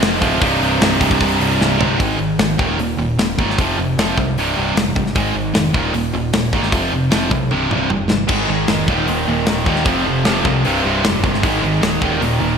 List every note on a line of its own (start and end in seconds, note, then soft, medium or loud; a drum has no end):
0.00 0.18 F1 loud
0.00 0.20 F2 loud
0.00 0.40 F2 medium
0.00 0.21 C3 loud
0.00 0.40 C3 medium
0.00 0.20 F3 loud
0.00 0.41 F3 medium
0.00 0.41 G#3 medium
0.00 0.40 C4 medium
0.00 0.40 F4 medium
0.00 snare loud
0.00 open hi-hat medium
0.21 0.38 D1 loud
0.21 0.40 F2 medium
0.21 0.41 C3 medium
0.21 0.40 F3 medium
0.21 kick medium
0.21 open hi-hat medium
0.40 0.58 C1 loud
0.40 1.78 C2 medium
0.40 1.78 G2 loud
0.40 1.76 C3 loud
0.40 0.99 G3 loud
0.40 0.97 D#4 loud
0.40 kick loud
0.40 open hi-hat medium
0.61 0.77 C1 medium
0.61 open hi-hat medium
0.81 0.97 C1 medium
0.81 snare loud
0.81 open hi-hat medium
0.99 1.17 C1 medium
0.99 1.99 C2 medium
0.99 1.99 G2 medium
0.99 1.98 C3 medium
0.99 1.98 G3 medium
0.99 1.98 D#4 medium
0.99 kick medium
0.99 open hi-hat medium
1.11 kick medium
1.21 1.37 C1 loud
1.21 kick loud
1.21 open hi-hat medium
1.40 1.57 C1 medium
1.40 open hi-hat medium
1.60 1.77 C1 medium
1.60 snare medium
1.78 1.96 C1 medium
1.78 1.97 C2 medium
1.78 1.97 G2 medium
1.78 1.97 C3 medium
1.78 floor tom medium
1.97 2.19 G#1 loud
1.97 2.17 G#2 medium
1.97 2.17 D#3 medium
1.97 2.18 G#3 loud
1.97 kick loud
1.97 open hi-hat medium
2.18 2.38 G#1 medium
2.18 2.37 G#2 medium
2.18 2.37 D#3 medium
2.39 2.58 G#1 medium
2.39 2.57 G#2 medium
2.39 2.58 D#3 medium
2.39 snare loud
2.39 open hi-hat medium
2.58 2.78 D#1 medium
2.58 2.77 D#2 medium
2.58 2.77 A#2 medium
2.58 2.78 D#3 loud
2.58 kick medium
2.78 2.97 D#1 medium
2.78 2.97 D#2 medium
2.78 2.97 A#2 medium
2.78 open hi-hat medium
2.97 3.17 D#1 medium
2.97 3.16 D#2 medium
2.97 3.16 A#2 medium
3.17 3.37 D#1 medium
3.17 3.36 D#2 medium
3.17 3.37 A#2 medium
3.17 snare loud
3.17 open hi-hat medium
3.38 3.57 G1 medium
3.38 3.57 D#2 medium
3.38 3.57 A#2 loud
3.38 3.57 D#3 loud
3.38 kick medium
3.50 snare soft
3.58 3.77 F1 loud
3.58 3.77 F2 medium
3.58 3.77 C3 loud
3.58 3.78 F3 loud
3.58 kick loud
3.58 open hi-hat medium
3.77 3.96 F1 medium
3.77 3.96 F2 medium
3.77 3.96 C3 medium
3.97 4.16 F1 medium
3.97 4.17 F2 loud
3.97 4.17 C3 loud
3.97 4.17 F3 loud
3.97 snare loud
3.97 open hi-hat medium
4.17 4.36 C2 medium
4.17 4.35 F2 medium
4.17 4.35 C3 medium
4.17 kick medium
4.36 4.55 C1 medium
4.36 4.55 C2 medium
4.36 4.56 G2 medium
4.36 4.56 C3 loud
4.36 open hi-hat medium
4.57 4.75 C1 medium
4.57 4.75 C2 medium
4.57 4.75 G2 loud
4.57 4.76 C3 loud
4.75 4.94 F1 medium
4.75 4.94 C2 medium
4.75 4.94 G2 medium
4.75 snare loud
4.75 open hi-hat medium
4.96 5.15 G1 medium
4.96 5.14 C2 medium
4.96 5.14 G2 medium
4.96 kick medium
5.06 snare soft
5.15 5.34 G#1 loud
5.15 5.33 G#2 loud
5.15 5.34 D#3 medium
5.15 5.34 G#3 loud
5.15 kick loud
5.15 open hi-hat medium
5.34 5.54 G#1 medium
5.34 5.52 G#2 medium
5.34 5.53 D#3 medium
5.54 5.73 F1 medium
5.54 5.72 G#2 medium
5.54 5.72 D#3 medium
5.54 snare loud
5.54 open hi-hat medium
5.74 5.93 D#1 medium
5.74 5.93 D#2 medium
5.74 5.93 A#2 medium
5.74 5.93 D#3 loud
5.74 kick medium
5.93 6.13 D#1 medium
5.93 6.12 D#2 medium
5.93 6.12 A#2 medium
5.93 open hi-hat medium
6.13 6.32 D#1 medium
6.13 6.32 D#2 medium
6.13 6.32 A#2 medium
6.33 6.52 D#1 medium
6.33 6.51 D#2 medium
6.33 6.51 A#2 medium
6.33 snare loud
6.33 open hi-hat medium
6.53 6.72 G1 medium
6.53 6.72 D#2 medium
6.53 6.72 A#2 loud
6.53 6.73 D#3 medium
6.53 kick medium
6.63 snare soft
6.72 6.91 F1 loud
6.72 6.92 F2 medium
6.72 6.92 C3 medium
6.72 6.92 F3 loud
6.72 kick loud
6.72 open hi-hat medium
6.92 7.11 F1 medium
6.92 7.09 F2 medium
6.92 7.10 C3 medium
7.11 7.30 F1 medium
7.11 7.29 F2 medium
7.11 7.30 C3 loud
7.11 7.31 F3 medium
7.11 snare loud
7.11 open hi-hat medium
7.31 7.50 B1 medium
7.31 7.49 F2 medium
7.31 7.49 C3 medium
7.31 kick medium
7.51 7.70 C1 medium
7.51 7.69 C2 medium
7.51 7.70 G2 medium
7.51 7.70 C3 medium
7.51 high tom medium
7.70 7.89 C1 medium
7.70 7.88 C2 medium
7.70 7.88 G2 loud
7.70 7.90 C3 medium
7.70 mid tom medium
7.90 8.09 F1 medium
7.90 8.07 C2 medium
7.90 8.08 G2 medium
7.90 mid tom medium
8.09 8.29 G1 medium
8.09 8.27 C2 medium
8.09 8.28 G2 medium
8.09 snare medium
8.28 8.48 G#1 loud
8.28 8.47 G#2 medium
8.28 8.47 D#3 medium
8.28 8.48 G#3 loud
8.28 kick loud
8.28 crash medium
8.48 8.68 G#1 medium
8.48 8.67 G#2 medium
8.48 8.67 D#3 medium
8.48 8.67 G#3 medium
8.68 8.87 F1 medium
8.68 8.87 G#2 medium
8.68 8.87 D#3 medium
8.68 8.87 G#3 loud
8.68 snare loud
8.68 open hi-hat medium
8.88 9.07 D#1 medium
8.88 9.07 D#2 loud
8.88 9.07 A#2 medium
8.88 9.08 D#3 loud
8.88 kick medium
9.07 9.27 D#1 medium
9.07 9.26 D#2 medium
9.07 9.26 A#2 medium
9.07 9.27 D#3 loud
9.07 open hi-hat medium
9.27 9.46 D#1 medium
9.27 9.46 D#2 medium
9.27 9.46 A#2 medium
9.27 9.46 D#3 medium
9.46 9.65 D#1 medium
9.46 9.65 D#2 medium
9.46 9.65 A#2 medium
9.46 9.64 D#3 loud
9.46 snare loud
9.46 open hi-hat medium
9.66 9.85 D#2 medium
9.66 9.86 D#2 medium
9.66 9.86 A#2 medium
9.66 9.86 D#3 loud
9.66 kick medium
9.76 snare soft
9.85 10.05 F1 loud
9.85 10.05 F2 loud
9.85 10.05 C3 loud
9.85 10.05 F3 loud
9.85 kick loud
9.85 open hi-hat medium
10.06 10.25 F1 medium
10.06 10.24 F2 medium
10.06 10.24 C3 medium
10.06 10.24 F3 medium
10.25 10.44 F1 medium
10.25 10.44 F2 loud
10.25 10.45 C3 loud
10.25 10.45 F3 loud
10.25 snare loud
10.25 open hi-hat medium
10.45 10.64 C2 medium
10.45 10.63 F2 medium
10.45 10.64 C3 medium
10.45 10.64 F3 loud
10.45 kick medium
10.65 10.84 C1 medium
10.65 10.83 C2 medium
10.65 10.83 G2 medium
10.65 10.84 C3 loud
10.65 open hi-hat medium
10.84 11.03 C1 medium
10.84 11.03 C2 loud
10.84 11.03 G2 loud
10.84 11.03 C3 loud
11.04 11.22 F1 medium
11.04 11.22 C2 medium
11.04 11.22 G2 medium
11.04 11.22 C3 loud
11.04 snare loud
11.04 open hi-hat medium
11.23 11.42 G1 loud
11.23 11.41 C2 medium
11.23 11.42 G2 medium
11.23 11.42 C3 medium
11.23 kick medium
11.34 snare soft
11.42 11.62 G#1 loud
11.42 11.61 G#2 loud
11.42 11.62 D#3 loud
11.42 11.62 G#3 loud
11.42 kick loud
11.42 open hi-hat medium
11.62 11.81 G#1 medium
11.62 11.80 G#2 medium
11.62 11.80 D#3 medium
11.62 11.81 G#3 medium
11.81 12.01 D1 medium
11.81 12.00 G#2 medium
11.81 12.00 D#3 loud
11.81 12.01 G#3 medium
11.81 snare loud
11.81 open hi-hat medium
12.01 12.20 D#1 medium
12.01 12.19 D#2 loud
12.01 12.20 A#2 loud
12.01 12.21 D#3 loud
12.01 kick medium
12.20 12.40 D#1 medium
12.20 12.38 D#2 medium
12.20 12.39 A#2 medium
12.20 12.40 D#3 loud
12.20 open hi-hat medium
12.40 12.58 D#1 medium
12.40 12.57 D#2 medium
12.40 12.58 A#2 medium
12.40 12.58 D#3 loud